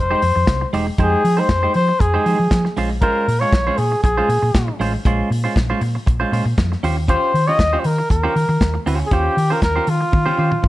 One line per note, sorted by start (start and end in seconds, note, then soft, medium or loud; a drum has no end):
0.00 0.13 F1 medium
0.00 0.74 C5 medium
0.11 0.21 G#3 medium
0.11 0.22 D#4 medium
0.11 0.22 G4 medium
0.11 0.23 C5 medium
0.22 0.31 F2 medium
0.22 muted clean electric guitar stroke soft
0.22 open hi-hat medium
0.36 0.43 F2 medium
0.36 muted clean electric guitar stroke soft
0.47 0.63 C2 medium
0.47 muted clean electric guitar stroke soft
0.47 kick loud
0.47 snare loud
0.47 closed hi-hat medium
0.61 muted clean electric guitar stroke soft
0.73 0.89 E1 medium
0.73 0.88 G#3 medium
0.73 0.87 D#4 medium
0.73 0.86 G4 medium
0.73 0.86 C5 medium
0.73 open hi-hat medium
0.87 muted clean electric guitar stroke soft
0.98 1.14 F2 loud
0.98 1.22 G#3 medium
0.98 1.22 D#4 medium
0.98 1.22 G4 loud
0.98 1.41 G#4 medium
0.98 1.23 C5 medium
0.98 kick loud
0.98 closed hi-hat medium
1.24 1.40 F3 medium
1.24 open hi-hat medium
1.37 1.48 G#3 medium
1.37 1.48 D#4 soft
1.37 1.48 G4 medium
1.37 1.48 C5 medium
1.37 1.75 C5 medium
1.49 1.65 F2 loud
1.49 muted clean electric guitar stroke soft
1.49 kick loud
1.49 snare loud
1.49 closed hi-hat medium
1.63 1.74 G#3 medium
1.63 1.74 D#4 medium
1.63 1.75 G4 medium
1.63 1.75 C5 medium
1.74 1.91 F3 loud
1.74 2.02 C5 loud
1.74 muted clean electric guitar stroke soft
1.74 open hi-hat medium
1.88 muted clean electric guitar stroke medium
2.00 2.16 F2 loud
2.00 2.77 G#4 medium
2.00 muted clean electric guitar stroke soft
2.00 kick loud
2.00 closed hi-hat medium
2.14 2.24 G#3 medium
2.14 2.25 D#4 medium
2.14 2.25 G4 medium
2.14 2.26 C5 medium
2.25 2.34 F3 medium
2.25 2.37 G#3 medium
2.25 2.38 D#4 medium
2.25 2.38 G4 medium
2.25 2.37 C5 medium
2.25 open hi-hat medium
2.39 2.47 F3 medium
2.39 muted clean electric guitar stroke soft
2.51 2.67 F3 medium
2.51 muted clean electric guitar stroke soft
2.51 kick loud
2.51 snare loud
2.51 closed hi-hat medium
2.65 muted clean electric guitar stroke soft
2.65 snare soft
2.77 3.09 A#1 medium
2.77 2.91 G#3 medium
2.77 2.90 C#4 medium
2.77 2.90 F4 medium
2.77 2.89 C5 medium
2.77 open hi-hat medium
2.90 muted clean electric guitar stroke soft
3.02 3.25 G#3 medium
3.02 3.26 C#4 medium
3.02 3.26 F4 medium
3.02 3.42 A#4 loud
3.02 3.26 C5 medium
3.02 kick loud
3.02 closed hi-hat medium
3.28 3.44 A#2 medium
3.28 open hi-hat medium
3.40 3.52 G#3 soft
3.40 3.52 C#4 soft
3.40 3.52 F4 medium
3.40 3.79 C#5 medium
3.40 3.51 C#5 medium
3.52 3.69 A#1 loud
3.52 kick loud
3.52 snare loud
3.52 closed hi-hat medium
3.67 3.77 G#3 medium
3.67 3.78 C#4 medium
3.67 3.78 F4 medium
3.67 3.79 C5 medium
3.78 3.94 A#2 loud
3.78 4.02 G#4 medium
3.78 open hi-hat medium
3.92 muted clean electric guitar stroke medium
4.03 4.20 A#1 loud
4.03 4.75 G#4 medium
4.03 muted clean electric guitar stroke soft
4.03 kick loud
4.03 closed hi-hat medium
4.17 4.29 G#3 medium
4.17 4.29 C#4 medium
4.17 4.29 F4 medium
4.17 4.30 C5 medium
4.29 4.37 A#2 loud
4.29 open hi-hat medium
4.42 4.50 A#2 medium
4.42 muted clean electric guitar stroke soft
4.54 4.70 A#2 medium
4.54 muted clean electric guitar stroke soft
4.54 kick loud
4.54 snare loud
4.54 closed hi-hat medium
4.68 muted clean electric guitar stroke soft
4.80 4.96 A1 medium
4.80 4.95 G#3 medium
4.80 4.93 C#4 medium
4.80 4.93 F4 medium
4.80 4.93 C5 medium
4.80 open hi-hat medium
4.94 muted clean electric guitar stroke soft
5.05 5.21 A#1 loud
5.05 5.29 G#3 medium
5.05 5.29 C#4 medium
5.05 5.29 F4 medium
5.05 5.30 C5 medium
5.05 kick loud
5.05 closed hi-hat medium
5.30 5.46 A#2 medium
5.30 muted clean electric guitar stroke soft
5.30 open hi-hat medium
5.44 5.55 G#3 soft
5.44 5.55 C#4 soft
5.44 5.55 F4 medium
5.44 5.54 C5 medium
5.56 5.72 A#1 loud
5.56 muted clean electric guitar stroke soft
5.56 kick loud
5.56 snare loud
5.56 closed hi-hat medium
5.70 5.80 G#3 medium
5.70 5.81 C#4 medium
5.70 5.81 F4 medium
5.70 5.81 C5 medium
5.81 5.97 A#2 loud
5.81 muted clean electric guitar stroke soft
5.81 open hi-hat medium
5.95 muted clean electric guitar stroke soft
6.06 6.23 A#1 medium
6.06 muted clean electric guitar stroke soft
6.06 kick loud
6.06 closed hi-hat medium
6.20 6.31 G#3 medium
6.20 6.31 C#4 medium
6.20 6.32 F4 medium
6.20 6.32 C5 medium
6.32 6.41 A#2 medium
6.32 6.44 G#3 medium
6.32 6.44 C#4 medium
6.32 6.44 F4 medium
6.32 6.44 C5 medium
6.32 open hi-hat medium
6.45 6.53 A#2 medium
6.45 muted clean electric guitar stroke soft
6.58 6.74 F2 medium
6.58 muted clean electric guitar stroke soft
6.58 kick loud
6.58 snare loud
6.58 closed hi-hat medium
6.72 muted clean electric guitar stroke soft
6.72 snare soft
6.83 7.15 D#2 medium
6.83 6.98 C#4 medium
6.83 6.97 F4 medium
6.83 6.97 G4 medium
6.83 6.96 C5 medium
6.83 open hi-hat medium
6.97 muted clean electric guitar stroke soft
7.08 7.32 C#4 medium
7.08 7.32 F4 medium
7.08 7.32 G4 loud
7.08 7.49 C5 loud
7.08 7.33 C5 medium
7.08 kick loud
7.08 closed hi-hat medium
7.34 7.50 D#3 medium
7.34 open hi-hat medium
7.48 7.58 C#4 soft
7.48 7.58 F4 medium
7.48 7.58 G4 medium
7.48 7.58 C#5 medium
7.48 7.81 D#5 loud
7.59 7.75 D#2 medium
7.59 muted clean electric guitar stroke soft
7.59 kick loud
7.59 snare loud
7.59 closed hi-hat medium
7.73 7.84 C#4 medium
7.73 7.84 F4 medium
7.73 7.85 G4 medium
7.73 7.85 C5 medium
7.80 7.88 C5 medium
7.84 8.01 D#3 medium
7.84 8.11 A#4 medium
7.84 open hi-hat medium
7.98 muted clean electric guitar stroke soft
8.10 8.26 D#2 medium
8.10 8.83 A#4 medium
8.10 muted clean electric guitar stroke soft
8.10 kick loud
8.10 closed hi-hat medium
8.23 8.34 C#4 medium
8.23 8.35 F4 medium
8.23 8.35 G4 medium
8.23 8.35 C5 medium
8.36 8.44 D#3 medium
8.36 muted clean electric guitar stroke soft
8.36 open hi-hat medium
8.49 8.56 D#3 loud
8.49 muted clean electric guitar stroke soft
8.61 8.77 D#2 medium
8.61 muted clean electric guitar stroke soft
8.61 kick loud
8.61 snare loud
8.61 closed hi-hat medium
8.74 muted clean electric guitar stroke soft
8.86 9.02 D2 medium
8.86 9.06 C#4 medium
8.86 9.00 F4 medium
8.86 8.99 G4 medium
8.86 8.99 C5 medium
8.86 open hi-hat medium
9.00 muted clean electric guitar stroke soft
9.06 9.14 G#4 medium
9.11 9.27 D#2 loud
9.11 9.35 C#4 medium
9.11 9.35 F4 medium
9.11 9.54 G4 loud
9.11 9.36 G4 medium
9.11 9.36 C5 loud
9.11 kick loud
9.11 closed hi-hat medium
9.37 9.53 D#3 medium
9.37 muted clean electric guitar stroke soft
9.37 open hi-hat medium
9.50 9.61 C#4 medium
9.50 9.61 F4 medium
9.50 9.61 G4 medium
9.50 9.63 A#4 medium
9.50 9.61 C5 medium
9.62 9.78 D#2 loud
9.62 9.91 A#4 loud
9.62 kick loud
9.62 snare loud
9.62 closed hi-hat medium
9.76 9.86 C#4 medium
9.76 9.87 F4 medium
9.76 9.87 G4 medium
9.76 9.87 C5 medium
9.87 10.03 D#3 medium
9.87 10.68 F4 medium
9.87 muted clean electric guitar stroke soft
9.87 open hi-hat medium
10.01 muted clean electric guitar stroke soft
10.12 10.29 D#3 medium
10.12 muted clean electric guitar stroke soft
10.12 kick loud
10.12 high tom medium
10.26 10.36 C#4 medium
10.26 10.37 F4 medium
10.26 10.38 G4 medium
10.26 10.38 C5 medium
10.26 high tom soft
10.38 10.54 D#3 medium
10.38 10.50 C#4 medium
10.38 10.50 F4 medium
10.38 10.50 G4 medium
10.38 10.50 C5 medium
10.51 muted clean electric guitar stroke soft
10.51 mid tom medium
10.63 10.68 D#2 medium
10.63 muted clean electric guitar stroke soft
10.63 kick loud
10.63 mid tom medium